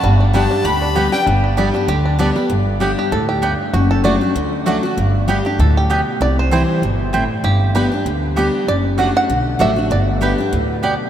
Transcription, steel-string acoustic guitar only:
0.04 0.62 G2 medium
0.34 0.50 G3 medium
0.34 0.51 B3 medium
0.34 0.51 D4 medium
0.34 0.50 G4 medium
0.51 0.65 D4 soft
0.51 0.64 G4 medium
0.65 1.24 D3 medium
0.96 1.12 G3 medium
0.96 1.13 B3 medium
0.96 1.13 D4 medium
0.96 1.11 G4 medium
1.12 1.27 D4 medium
1.12 1.26 G4 medium
1.27 1.86 G2 medium
1.57 1.74 D3 medium
1.57 1.74 G3 medium
1.57 1.74 B3 medium
1.57 1.73 G4 medium
1.74 1.89 B3 medium
1.74 1.88 G4 medium
1.88 2.17 D3 medium
2.19 2.35 D3 medium
2.19 2.36 G3 medium
2.19 2.36 B3 medium
2.19 2.34 G4 medium
2.36 2.50 B3 soft
2.36 2.49 G4 medium
2.50 3.09 G2 medium
2.80 3.10 G3 medium
2.80 3.11 B3 medium
2.80 3.11 D4 medium
2.80 3.11 G4 medium
3.12 3.42 A2 medium
3.43 3.72 G2 medium
3.74 4.33 F#2 medium
4.04 4.21 F#3 medium
4.04 4.21 A3 medium
4.04 4.21 D4 medium
4.04 4.20 F#4 medium
4.21 4.36 D4 soft
4.21 4.35 F#4 medium
4.36 4.95 D3 medium
4.66 4.83 F#3 medium
4.66 4.83 A3 medium
4.66 4.83 D4 loud
4.66 4.82 F#4 medium
4.83 4.98 D4 medium
4.83 4.97 F#4 medium
4.98 5.56 G2 medium
5.28 5.44 G3 medium
5.28 5.45 B3 medium
5.28 5.45 D4 medium
5.28 5.44 G4 medium
5.45 5.59 D4 medium
5.45 5.58 G4 medium
5.59 5.89 A2 loud
5.90 6.20 B2 medium
6.21 6.80 C3 medium
6.51 6.81 E3 medium
6.51 6.81 G3 medium
6.51 6.82 C4 medium
6.51 6.82 E4 medium
6.83 7.12 B2 medium
7.14 7.43 A2 medium
7.44 8.03 G2 medium
7.75 7.91 G3 medium
7.75 7.92 B3 medium
7.75 7.92 D4 medium
7.75 7.90 G4 medium
7.92 8.06 D4 medium
7.92 8.05 G4 medium
8.06 8.65 D3 medium
8.37 8.66 G3 medium
8.37 8.67 B3 medium
8.37 8.67 D4 medium
8.37 8.67 G4 medium
8.68 9.27 F#2 medium
8.98 9.28 F#3 medium
8.98 9.28 A3 medium
8.98 9.28 D4 medium
8.98 9.29 F#4 medium
9.30 9.88 D3 loud
9.59 9.76 F#3 medium
9.59 9.76 A3 medium
9.59 9.77 D4 medium
9.59 9.75 F#4 medium
9.76 9.91 D4 medium
9.76 9.90 F#4 medium
9.91 10.50 G2 medium
10.21 10.38 G3 medium
10.21 10.38 B3 medium
10.21 10.38 D4 medium
10.21 10.37 G4 medium
10.38 10.53 D4 medium
10.38 10.52 G4 medium
10.53 10.82 A2 medium
10.83 11.10 B2 medium

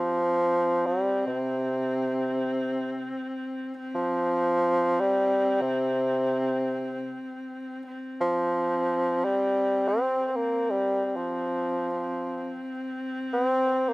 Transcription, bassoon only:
0.00 0.88 F3 medium
0.86 1.26 G3 medium
1.27 3.13 C3 medium
3.95 5.02 F3 medium
5.00 5.63 G3 medium
5.61 7.18 C3 medium
8.21 9.26 F3 medium
9.25 9.89 G3 medium
9.88 10.26 C4 medium
10.26 10.37 C4 medium
10.36 10.72 A#3 medium
10.70 11.05 G3 medium
11.05 11.18 G3 medium
11.16 12.59 F3 medium
13.33 13.90 C4 medium
13.88 13.94 A#3 medium

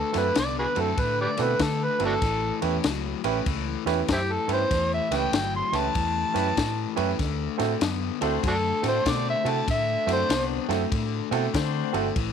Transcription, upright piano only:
0.13 0.24 C4 medium
0.13 0.25 E4 medium
0.13 0.25 F#4 medium
0.13 0.25 A4 medium
0.76 0.87 C4 medium
0.76 0.87 E4 medium
0.76 0.87 F#4 medium
0.76 0.87 A4 medium
1.38 1.49 C4 medium
1.38 1.49 E4 medium
1.38 1.50 F#4 medium
1.38 1.50 A4 medium
1.99 2.11 C4 medium
1.99 2.11 E4 medium
1.99 2.11 F#4 medium
1.99 2.11 A4 medium
2.61 2.73 C#4 medium
2.61 2.73 E4 medium
2.61 2.73 G4 medium
2.61 2.73 B4 medium
3.24 3.36 C#4 medium
3.24 3.35 E4 medium
3.24 3.35 G4 medium
3.24 3.36 B4 medium
3.86 3.97 C#4 medium
3.86 3.97 E4 medium
3.86 3.98 G4 medium
3.86 3.98 B4 loud
4.47 4.59 C#4 medium
4.47 4.60 E4 medium
4.47 4.60 G4 medium
4.47 4.60 B4 medium
5.11 5.22 C#4 medium
5.11 5.22 E4 medium
5.11 5.22 G4 medium
5.11 5.22 B4 medium
5.72 5.84 C#4 medium
5.72 5.84 E4 medium
5.72 5.84 G4 medium
5.72 5.84 B4 medium
6.34 6.46 C#4 medium
6.34 6.46 E4 medium
6.34 6.46 G4 medium
6.34 6.46 B4 medium
6.96 7.08 C#4 medium
6.96 7.08 E4 medium
6.96 7.08 G4 medium
6.96 7.08 B4 medium
7.58 7.70 C4 medium
7.58 7.70 E4 medium
7.58 7.70 F#4 medium
7.58 7.70 A4 medium
8.21 8.32 C4 medium
8.21 8.32 E4 medium
8.21 8.33 F#4 medium
8.21 8.33 A4 medium
8.82 8.94 C4 medium
8.82 8.94 E4 medium
8.82 8.95 F#4 medium
8.82 8.95 A4 medium
9.44 9.56 C4 medium
9.44 9.56 E4 medium
9.44 9.56 F#4 medium
9.44 9.57 A4 medium
10.06 10.18 C4 medium
10.06 10.18 E4 medium
10.06 10.18 F#4 medium
10.06 10.19 A4 medium
10.69 10.80 C4 medium
10.69 10.80 E4 medium
10.69 10.80 F#4 medium
10.69 10.81 A4 medium
11.31 11.43 C4 loud
11.31 11.43 E4 medium
11.31 11.43 F#4 medium
11.31 11.43 A4 loud
11.93 12.05 C4 medium
11.93 12.05 E4 medium
11.93 12.05 F#4 medium
11.93 12.05 A4 loud

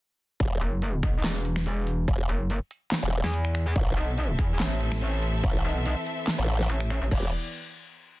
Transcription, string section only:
3.76 7.08 E3 medium
3.76 7.08 C4 medium
3.76 7.08 A4 medium
3.76 7.08 E5 medium
7.11 7.31 E3 medium
7.11 7.31 B3 medium
7.11 7.31 G4 medium
7.11 7.31 D5 medium

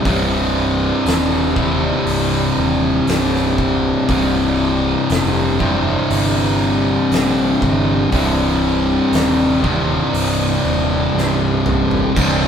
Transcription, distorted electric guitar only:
0.04 1.58 C2 medium
0.04 1.54 G2 loud
0.04 1.55 C3 loud
1.55 4.07 C2 medium
1.55 4.06 G2 medium
1.55 4.11 C3 medium
4.07 5.62 C2 medium
4.07 5.57 G2 medium
4.07 5.58 C3 loud
5.59 8.10 C2 medium
5.59 8.10 G2 medium
5.59 8.14 C3 medium
8.11 9.60 C2 medium
8.11 9.61 G2 medium
8.11 9.61 C3 loud
9.62 12.14 C2 medium
9.62 12.13 G2 medium
9.62 12.12 C3 medium
12.15 12.48 C2 medium
12.15 12.48 G2 medium
12.15 12.48 C3 medium

